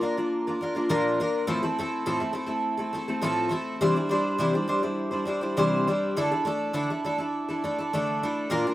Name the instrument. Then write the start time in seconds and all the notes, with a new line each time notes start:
twelve-string acoustic guitar
0.01 A#3 D4 F4 A#4
0.17 A#3 D4 F4 A#4
0.47 A#3 D4 F4 A#4
0.61 A#3 D4 F4 A#4
0.75 A#3 D4 F4 A#4
0.89 A#2 F3 A#3 D4 F4 A#4
1.20 A#3 D4 F4 A#4
1.47 A2 F3 A3 C4 E4 A4
1.63 A3 C4 E4 A4
1.79 A3 C4 E4 A4
2.06 A2 F3 A3 C4 E4 A4
2.20 A3 C4 E4 A4
2.33 A3 C4 E4 A4
2.46 A3 C4 E4 A4
2.77 A3 C4 E4 A4
2.93 A3 C4 E4 A4
3.08 A3 C4 E4 A4
3.21 A2 F3 A3 C4 E4 A4
3.49 A3 C4 E4 A4
3.81 C3 E3 G3 D4 E4 C5
3.95 G3 D4 E4 C5
4.09 G3 D4 E4 C5
4.38 C3 E3 G3 D4 E4 C5
4.53 G3 D4 E4 C5
4.68 G3 D4 E4 C5
4.83 G3 D4 E4 C5
5.11 G3 D4 E4 C5
5.25 G3 D4 E4 C5
5.41 G3 D4 E4 C5
5.57 C3 E3 G3 D4 E4 C5
5.87 G3 D4 E4 C5
6.17 D3 A3 D4 E4 A4
6.31 D4 E4 A4
6.45 A3 D4 E4 A4
6.73 D3 A3 D4 E4 A4
6.90 D4 E4 A4
7.04 A3 D4 E4 A4
7.18 D4 E4 A4
7.49 D4 E4 A4
7.64 A3 D4 E4 A4
7.78 D4 E4 A4
7.93 D3 A3 D4 E4 A4
8.23 A3 D4 E4 A4
8.50 A#2 F3 A#3 D4 F4 A#4
8.67 A#3 D4 F4 A#4